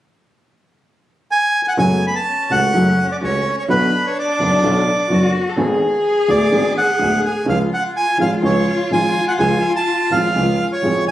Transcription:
1.31 G#5
1.64 G#5
1.68 F#5
1.77 F#1 F#2 C#3 F#3 G#3 A3 B3 F#4 G#5
2.07 B5
2.16 A5
2.26 C#4
2.50 C#2 C#3 G#3 A3 F#4 F#5
2.74 F#1 F#2 C#3 F#3 G#3 A3 F#4
3.12 D5
3.21 C#2 C#3 G#3 A3 F#4 C#5
3.59 C#5
3.68 B1 B2 D3 F#3 B3 D4 F#4 B4
4.07 C#5
4.19 D5
4.39 F#1 F#2 D3 F#3 B3 F#4
4.63 B1 B2 D3 F#3 B3 F#4
5.09 F#1 F#2 D3 F#3 B3 F#4
5.49 A4
5.56 G#1 G#2 D3 G#3 B3 G#4
6.28 D1 D2 D3 G#3 B3 G#4 D5
6.52 G#1 G#2 D3 G#3 B3 G#4
6.78 F#5
6.99 D1 D2 D3 G#3 B3 G#4
7.25 G#5
7.45 C#2 C#3 F3 G#3 C#4 F4 G#4 F5
7.74 F#5
7.97 G#5
8.18 G#1 G#2 F3 G#3 C#4 G#4 F5
8.42 C#2 C#3 F3 G#3 C#4 G#4 C#5
8.90 G#1 G#2 F3 G#3 C#4 G#4 G#5
9.28 F#5
9.38 C#2 C#3 F3 G#3 C#4 G#4 G#5
9.76 A5
10.11 G#1 G#2 F3 G#3 C#4 G#4 F5
10.35 C#2 C#3 F3 G#3 C#4 G#4
10.73 C#5
10.83 G#1 G#2 F3 G#3 C#4 G#4
11.06 C2 G#5

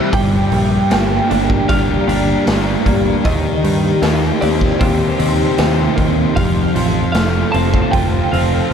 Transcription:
Already playing: E3 G3 C4 E4 G4 E5
0.12 G1 G2 G3 G4 D5 G5 A#5, kick, open hi-hat
0.52 A#1 G3, open hi-hat
0.90 G1 A#3 G5, snare, open hi-hat
1.29 G1 D4 G4, open hi-hat
1.50 kick
1.68 G1 D4 G4 F5, kick, open hi-hat
2.07 G1 D4 G4, open hi-hat
2.46 G1 G3 D4, snare, open hi-hat
2.86 G1 G3 A#3, kick, open hi-hat
3.24 D#2 D#3 D#4 D#5 C6, kick, open hi-hat
3.63 G2 D#3, open hi-hat
4.02 D#2 A#3, snare, open hi-hat
4.40 D#2 C4 G4 D5, open hi-hat
4.61 kick, snare
4.79 D#2 C4 G4 C5, kick, open hi-hat
5.18 D#2 C4 G4, open hi-hat
5.58 D#2 D#3 C4, snare, open hi-hat
5.96 D#2 D#3 A#3, kick, open hi-hat
6.35 F1 F2 F3 A4 F5, kick, open hi-hat
6.75 A1 F3, open hi-hat
7.12 F1 A3 F5, snare, open hi-hat
7.52 F1 C4 F4 A5, open hi-hat
7.74 kick
7.92 F1 C4 F4 G5, kick, open hi-hat
8.32 F1 C4 F4 F5, open hi-hat

